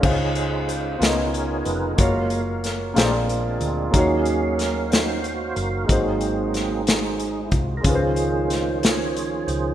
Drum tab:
CC |x-----|------|------|------|
HH |-xxxxx|xxxxxx|xxxxxx|xxxxxx|
SD |---o--|--oo--|--oo--|--oo--|
BD |o-----|o-----|o-----|o----o|

CC |------|
HH |xxxxxx|
SD |--oo--|
BD |o-----|